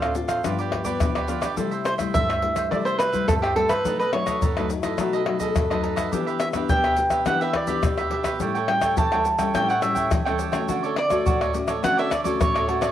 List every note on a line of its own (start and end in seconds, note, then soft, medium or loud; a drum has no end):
0.00 0.41 A2 medium
0.00 0.10 C4 medium
0.00 0.11 F4 medium
0.00 0.11 A4 medium
0.00 0.14 A4 soft
0.00 0.14 C5 medium
0.00 0.11 D5 medium
0.00 0.14 F5 medium
0.00 pandeiro soft
0.00 tamborim medium
0.00 shaker soft
0.15 0.39 C4 medium
0.15 0.39 F4 medium
0.15 0.40 A4 medium
0.15 muted cavaquinho stroke soft
0.15 pandeiro medium
0.15 shaker medium
0.28 0.43 A4 soft
0.28 0.43 C5 medium
0.28 0.42 F5 medium
0.28 pandeiro soft
0.28 tamborim medium
0.28 shaker medium
0.28 surdo soft
0.44 0.98 G2 medium
0.44 0.82 F3 medium
0.44 0.82 B3 medium
0.44 0.83 D4 medium
0.44 0.57 F4 soft
0.44 0.58 G4 soft
0.44 0.58 B4 soft
0.44 0.57 D5 medium
0.44 pandeiro medium
0.44 tamborim medium
0.44 shaker medium
0.44 surdo medium
0.59 0.86 G4 medium
0.59 0.85 B4 medium
0.59 0.83 D5 medium
0.59 pandeiro soft
0.59 shaker soft
0.72 pandeiro medium
0.72 tamborim medium
0.72 surdo soft
0.85 1.24 F3 medium
0.85 1.24 B3 medium
0.85 1.24 D4 medium
0.85 1.14 G4 medium
0.85 1.14 B4 medium
0.85 1.13 D5 medium
0.85 pandeiro medium
0.85 shaker medium
0.85 surdo soft
1.00 1.55 D3 medium
1.00 pandeiro medium
1.00 tamborim medium
1.00 shaker medium
1.00 surdo loud
1.15 1.28 G4 medium
1.15 1.28 B4 medium
1.15 1.28 D5 medium
1.15 pandeiro soft
1.15 tamborim medium
1.15 shaker soft
1.28 1.46 F3 medium
1.28 1.46 B3 medium
1.28 1.46 D4 medium
1.28 1.42 F4 soft
1.28 1.42 G4 soft
1.28 1.41 B4 medium
1.28 1.40 D5 medium
1.28 pandeiro medium
1.28 shaker medium
1.41 1.56 G4 medium
1.41 1.56 B4 medium
1.41 1.56 D5 medium
1.41 pandeiro medium
1.41 tamborim medium
1.41 shaker medium
1.41 surdo soft
1.57 2.12 C3 medium
1.57 1.96 G3 medium
1.57 1.96 A3 medium
1.57 1.96 E4 medium
1.57 1.70 A4 soft
1.57 1.71 C5 soft
1.57 1.70 E5 soft
1.57 pandeiro medium
1.57 shaker medium
1.57 surdo medium
1.71 1.84 C5 medium
1.71 1.85 E5 medium
1.71 pandeiro soft
1.71 shaker soft
1.85 1.94 C5 medium
1.85 muted cavaquinho stroke soft
1.85 pandeiro medium
1.85 tamborim medium
1.85 shaker medium
1.98 2.38 G3 medium
1.98 2.38 A3 medium
1.98 2.38 E4 medium
1.98 2.14 C5 medium
1.98 2.12 E5 medium
1.98 pandeiro medium
1.98 tamborim medium
1.98 shaker medium
1.98 surdo soft
2.14 2.69 G2 medium
2.14 2.27 A4 soft
2.14 2.28 C5 medium
2.14 2.71 E5 medium
2.14 2.27 E5 medium
2.14 pandeiro medium
2.14 shaker medium
2.14 surdo medium
2.29 2.42 C5 soft
2.29 2.42 E5 medium
2.29 pandeiro soft
2.29 tamborim medium
2.29 shaker soft
2.42 2.67 G3 medium
2.42 2.67 A3 medium
2.42 2.67 E4 medium
2.42 muted cavaquinho stroke soft
2.42 pandeiro medium
2.56 2.71 C5 soft
2.56 2.70 E5 medium
2.56 pandeiro medium
2.56 tamborim medium
2.56 shaker medium
2.56 surdo soft
2.71 3.26 C3 medium
2.71 3.10 G3 medium
2.71 3.10 A3 medium
2.71 3.10 E4 medium
2.71 2.85 A4 soft
2.71 2.85 C5 soft
2.71 2.76 D5 medium
2.71 2.85 E5 medium
2.71 pandeiro medium
2.71 tamborim medium
2.71 shaker medium
2.71 surdo medium
2.85 2.98 C5 medium
2.85 3.13 C5 soft
2.85 3.11 E5 medium
2.85 pandeiro soft
2.85 shaker soft
2.99 3.26 B4 medium
2.99 pandeiro medium
2.99 tamborim medium
2.99 shaker medium
3.13 3.52 G3 medium
3.13 3.52 A3 medium
3.13 3.52 E4 medium
3.13 3.42 C5 medium
3.13 3.41 E5 medium
3.13 pandeiro medium
3.13 shaker medium
3.13 surdo soft
3.28 3.82 G2 medium
3.28 3.33 A4 medium
3.28 pandeiro medium
3.28 tamborim medium
3.28 shaker medium
3.28 surdo loud
3.42 3.55 G4 medium
3.42 3.56 C5 medium
3.42 3.56 E5 medium
3.42 pandeiro soft
3.42 tamborim medium
3.42 shaker soft
3.56 3.80 G3 soft
3.56 3.81 A3 medium
3.56 3.81 E4 medium
3.56 3.71 A4 medium
3.56 3.70 A4 soft
3.56 3.70 C5 soft
3.56 3.68 E5 medium
3.56 pandeiro medium
3.69 3.97 B4 medium
3.69 3.85 C5 medium
3.69 3.84 E5 medium
3.69 pandeiro medium
3.69 tamborim medium
3.69 shaker medium
3.69 surdo soft
3.85 4.40 B2 medium
3.85 4.02 F#3 medium
3.85 4.03 A3 soft
3.85 3.98 D#4 soft
3.85 4.03 D#4 medium
3.85 3.99 A4 soft
3.85 3.99 B4 soft
3.85 3.99 D#5 medium
3.85 pandeiro medium
3.85 shaker medium
3.85 surdo medium
3.99 4.13 A4 medium
3.99 4.13 B4 medium
3.99 4.13 D#5 medium
3.99 pandeiro soft
3.99 shaker soft
4.13 4.40 F#3 medium
4.13 4.41 A3 medium
4.13 4.41 D#4 medium
4.13 4.67 C#5 medium
4.13 muted cavaquinho stroke soft
4.13 pandeiro medium
4.13 tamborim medium
4.26 4.41 A4 soft
4.26 4.41 B4 medium
4.26 4.40 D#5 medium
4.26 pandeiro medium
4.26 tamborim medium
4.26 shaker medium
4.26 surdo soft
4.42 4.96 F#2 medium
4.42 4.55 D#4 soft
4.42 4.55 A4 soft
4.42 4.56 B4 soft
4.42 4.55 D#5 medium
4.42 pandeiro medium
4.42 shaker medium
4.42 surdo loud
4.57 4.95 F#3 medium
4.57 4.96 A3 medium
4.57 4.96 D#4 medium
4.57 4.69 A4 soft
4.57 4.70 B4 medium
4.57 4.70 D#5 medium
4.57 pandeiro soft
4.57 tamborim medium
4.57 shaker soft
4.70 4.84 D#4 medium
4.70 muted cavaquinho stroke soft
4.70 pandeiro medium
4.70 shaker medium
4.83 5.00 E4 medium
4.83 4.98 A4 soft
4.83 4.98 B4 soft
4.83 4.97 D#5 medium
4.83 pandeiro medium
4.83 tamborim medium
4.83 shaker medium
4.83 surdo soft
4.98 5.53 B2 medium
4.98 5.23 F#3 medium
4.98 5.24 A3 medium
4.98 5.12 D#4 soft
4.98 5.24 D#4 medium
4.98 5.26 F#4 medium
4.98 5.13 A4 soft
4.98 5.13 B4 medium
4.98 5.12 D#5 soft
4.98 pandeiro medium
4.98 tamborim medium
4.98 shaker medium
4.98 surdo medium
5.13 5.41 A4 medium
5.13 5.40 B4 medium
5.13 5.39 D#5 medium
5.13 pandeiro soft
5.13 shaker soft
5.26 5.66 F#3 soft
5.26 5.66 A3 soft
5.26 5.66 D#4 medium
5.26 5.40 F#4 medium
5.26 pandeiro medium
5.26 tamborim medium
5.40 6.23 A4 loud
5.40 5.69 A4 medium
5.40 5.69 B4 medium
5.40 5.68 D#5 medium
5.40 pandeiro medium
5.40 shaker medium
5.40 surdo soft
5.56 6.10 F#2 medium
5.56 pandeiro medium
5.56 tamborim medium
5.56 shaker medium
5.56 surdo medium
5.70 6.09 F#3 medium
5.70 6.09 A3 medium
5.70 6.09 D#4 medium
5.70 5.82 A4 medium
5.70 5.83 B4 medium
5.70 5.84 D#5 medium
5.70 pandeiro soft
5.70 tamborim medium
5.70 shaker soft
5.83 5.97 D#4 soft
5.83 5.97 A4 soft
5.83 5.96 B4 medium
5.83 5.95 D#5 medium
5.83 pandeiro medium
5.96 6.12 A4 medium
5.96 6.11 B4 medium
5.96 6.11 D#5 medium
5.96 pandeiro medium
5.96 tamborim medium
5.96 shaker medium
5.96 surdo soft
6.12 6.67 E3 medium
6.12 6.51 B3 soft
6.12 6.26 D4 soft
6.12 6.52 D4 medium
6.12 6.26 G4 soft
6.12 6.52 G4 medium
6.12 6.26 B4 soft
6.12 6.26 E5 medium
6.12 pandeiro medium
6.12 shaker medium
6.12 surdo medium
6.27 6.40 G4 medium
6.27 6.40 B4 medium
6.27 6.40 E5 medium
6.27 pandeiro soft
6.27 shaker soft
6.40 6.48 E5 medium
6.40 muted cavaquinho stroke soft
6.40 pandeiro medium
6.40 tamborim medium
6.40 shaker medium
6.53 6.94 B3 medium
6.53 6.94 D4 medium
6.53 6.94 G4 medium
6.53 6.69 G4 medium
6.53 6.69 B4 medium
6.53 6.68 E5 medium
6.53 pandeiro medium
6.53 tamborim medium
6.53 shaker medium
6.53 surdo soft
6.69 7.24 B2 medium
6.69 6.83 D4 soft
6.69 6.83 G4 medium
6.69 6.84 B4 soft
6.69 6.83 E5 medium
6.69 7.23 G5 loud
6.69 pandeiro medium
6.69 shaker medium
6.69 surdo loud
6.84 6.97 G4 soft
6.84 6.97 B4 medium
6.84 6.97 E5 medium
6.84 pandeiro soft
6.84 tamborim medium
6.84 shaker soft
6.97 7.22 B3 medium
6.97 7.22 D4 medium
6.97 7.23 G4 medium
6.97 muted cavaquinho stroke soft
6.97 pandeiro medium
6.97 shaker medium
7.10 7.26 G4 soft
7.10 7.26 B4 medium
7.10 7.25 E5 medium
7.10 pandeiro soft
7.10 tamborim medium
7.10 shaker medium
7.10 surdo soft
7.26 7.81 E3 medium
7.26 7.54 B3 medium
7.26 7.40 D4 soft
7.26 7.54 D4 medium
7.26 7.40 G4 soft
7.26 7.54 G4 medium
7.26 7.41 B4 soft
7.26 7.40 E5 soft
7.26 7.40 F#5 medium
7.26 pandeiro medium
7.26 tamborim medium
7.26 shaker medium
7.26 surdo medium
7.41 7.68 G4 medium
7.41 7.67 B4 medium
7.41 7.66 E5 medium
7.41 7.55 E5 medium
7.41 pandeiro soft
7.41 shaker soft
7.53 7.82 D5 medium
7.53 pandeiro medium
7.53 tamborim medium
7.53 surdo soft
7.67 8.07 B3 medium
7.67 8.07 D4 medium
7.67 8.08 G4 medium
7.67 7.97 G4 medium
7.67 7.97 B4 medium
7.67 7.96 E5 medium
7.67 pandeiro medium
7.67 shaker medium
7.67 surdo soft
7.83 8.38 B2 medium
7.83 pandeiro medium
7.83 tamborim medium
7.83 shaker medium
7.83 surdo loud
7.98 8.10 G4 medium
7.98 8.11 B4 medium
7.98 8.11 E5 medium
7.98 pandeiro soft
7.98 tamborim medium
7.98 shaker soft
8.11 8.29 B3 soft
8.11 8.25 D4 soft
8.11 8.29 D4 medium
8.11 8.25 G4 medium
8.11 8.29 G4 medium
8.11 8.24 B4 soft
8.11 8.23 E5 medium
8.11 pandeiro medium
8.24 8.39 G4 medium
8.24 8.39 B4 medium
8.24 8.39 E5 medium
8.24 pandeiro medium
8.24 tamborim medium
8.24 shaker medium
8.24 surdo soft
8.40 8.95 A2 medium
8.40 8.58 G3 medium
8.40 8.58 C#4 medium
8.40 8.58 E4 medium
8.40 8.54 G4 soft
8.40 8.54 A4 soft
8.40 8.55 C#5 medium
8.40 8.53 G5 medium
8.40 pandeiro medium
8.40 shaker medium
8.40 surdo medium
8.55 8.68 A4 medium
8.55 8.68 C#5 medium
8.55 8.68 G5 medium
8.55 pandeiro soft
8.55 shaker soft
8.68 8.96 G3 medium
8.68 8.96 C#4 soft
8.68 8.96 E4 medium
8.68 8.97 G5 medium
8.68 muted cavaquinho stroke soft
8.68 pandeiro medium
8.68 tamborim medium
8.81 8.97 A4 medium
8.81 8.96 C#5 medium
8.81 8.96 G5 medium
8.81 pandeiro medium
8.81 tamborim medium
8.81 shaker medium
8.81 surdo soft
8.97 9.52 E3 medium
8.97 9.11 G4 soft
8.97 9.11 A4 medium
8.97 9.12 C#5 medium
8.97 9.11 G5 medium
8.97 9.51 A5 medium
8.97 pandeiro medium
8.97 shaker medium
8.97 surdo medium
9.12 9.37 G3 medium
9.12 9.37 C#4 medium
9.12 9.37 E4 medium
9.12 9.24 A4 medium
9.12 9.25 C#5 medium
9.12 9.25 G5 medium
9.12 pandeiro soft
9.12 tamborim medium
9.12 shaker soft
9.25 muted cavaquinho stroke soft
9.25 pandeiro medium
9.25 shaker medium
9.39 9.50 G3 medium
9.39 9.50 C#4 medium
9.39 9.50 E4 medium
9.39 9.54 A4 medium
9.39 9.54 C#5 soft
9.39 9.53 G5 medium
9.39 pandeiro medium
9.39 tamborim medium
9.39 shaker medium
9.39 surdo soft
9.54 10.09 A2 medium
9.54 9.72 G3 medium
9.54 9.72 C#4 medium
9.54 9.72 E4 medium
9.54 9.68 G4 soft
9.54 9.68 A4 soft
9.54 9.69 C#5 medium
9.54 9.68 G5 medium
9.54 9.67 G5 medium
9.54 pandeiro medium
9.54 tamborim medium
9.54 shaker medium
9.54 surdo medium
9.69 9.96 A4 medium
9.69 9.95 C#5 medium
9.69 9.82 F#5 medium
9.69 9.94 G5 medium
9.69 pandeiro soft
9.69 shaker soft
9.82 10.21 G3 medium
9.82 10.22 C#4 soft
9.82 10.22 E4 medium
9.82 10.10 E5 medium
9.82 pandeiro medium
9.82 tamborim medium
9.82 shaker medium
9.95 10.25 A4 medium
9.95 10.25 C#5 medium
9.95 10.24 G5 medium
9.95 pandeiro medium
9.95 shaker medium
9.95 surdo soft
10.11 10.66 E3 medium
10.11 pandeiro medium
10.11 tamborim medium
10.11 shaker medium
10.11 surdo loud
10.25 10.51 G3 medium
10.25 10.51 C#4 medium
10.25 10.51 E4 medium
10.25 10.38 A4 medium
10.25 10.39 C#5 medium
10.25 10.39 G5 medium
10.25 pandeiro soft
10.25 tamborim medium
10.25 shaker soft
10.39 10.53 G4 soft
10.39 10.53 A4 medium
10.39 10.52 C#5 medium
10.39 10.51 G5 medium
10.39 pandeiro medium
10.39 shaker medium
10.52 10.93 A3 medium
10.52 10.93 C#4 medium
10.52 10.93 F#4 medium
10.52 10.68 A4 medium
10.52 10.67 C#5 medium
10.52 10.67 G5 medium
10.52 pandeiro medium
10.52 tamborim medium
10.52 shaker medium
10.52 surdo soft
10.68 11.24 D3 medium
10.68 10.82 F#4 soft
10.68 10.82 A4 soft
10.68 10.83 C#5 medium
10.68 10.82 D5 soft
10.68 pandeiro medium
10.68 shaker medium
10.68 surdo medium
10.83 10.96 A4 medium
10.83 10.96 C#5 medium
10.83 10.96 D5 medium
10.83 pandeiro soft
10.83 shaker soft
10.96 11.86 D5 medium
10.96 muted cavaquinho stroke soft
10.96 pandeiro medium
10.96 tamborim medium
11.10 11.50 A3 medium
11.10 11.50 F#4 medium
11.10 11.25 A4 medium
11.10 11.25 C#5 medium
11.10 11.24 D5 medium
11.10 pandeiro medium
11.10 tamborim medium
11.10 shaker medium
11.10 surdo soft
11.26 11.81 A2 medium
11.26 11.39 F#4 soft
11.26 11.40 A4 medium
11.26 11.40 C#5 medium
11.26 11.39 D5 medium
11.26 pandeiro medium
11.26 shaker medium
11.26 surdo loud
11.41 11.54 A4 soft
11.41 11.54 C#5 medium
11.41 11.54 D5 medium
11.41 pandeiro soft
11.41 tamborim medium
11.41 shaker soft
11.54 11.71 A3 medium
11.54 11.72 C#4 medium
11.54 11.72 F#4 medium
11.54 muted cavaquinho stroke soft
11.54 pandeiro medium
11.54 shaker medium
11.67 11.83 A4 medium
11.67 11.82 C#5 medium
11.67 11.82 D5 medium
11.67 pandeiro medium
11.67 tamborim medium
11.67 shaker medium
11.67 surdo soft
11.83 12.38 D3 medium
11.83 12.10 A3 medium
11.83 12.10 C#4 medium
11.83 11.96 F#4 soft
11.83 12.10 F#4 medium
11.83 11.97 A4 soft
11.83 11.97 C#5 soft
11.83 11.96 D5 soft
11.83 11.99 F#5 loud
11.83 pandeiro medium
11.83 tamborim medium
11.83 shaker medium
11.83 surdo medium
11.97 12.25 A4 medium
11.97 12.24 C#5 medium
11.97 12.23 D5 medium
11.97 12.12 E5 medium
11.97 pandeiro soft
11.97 shaker soft
12.11 12.20 D5 medium
12.11 pandeiro medium
12.11 tamborim medium
12.11 shaker medium
12.11 surdo soft
12.24 12.64 A3 medium
12.24 12.64 C#4 medium
12.24 12.64 F#4 medium
12.24 12.54 A4 medium
12.24 12.54 C#5 medium
12.24 12.53 D5 medium
12.24 pandeiro medium
12.24 shaker medium
12.24 surdo soft
12.41 12.92 A2 medium
12.41 12.85 C#5 medium
12.41 pandeiro medium
12.41 tamborim medium
12.41 shaker medium
12.41 surdo loud
12.54 12.67 A4 medium
12.54 12.68 C#5 medium
12.54 12.68 D5 medium
12.54 pandeiro soft
12.54 tamborim medium
12.54 shaker soft
12.68 12.92 A3 medium
12.68 12.92 C#4 medium
12.68 12.82 F#4 soft
12.68 12.92 F#4 medium
12.68 12.82 A4 medium
12.68 12.81 C#5 medium
12.68 12.80 D5 medium
12.68 pandeiro medium
12.81 12.92 A4 medium
12.81 12.92 C#5 medium
12.81 12.92 D5 medium
12.81 12.87 D5 medium
12.81 pandeiro medium
12.81 tamborim medium
12.81 shaker medium
12.81 surdo soft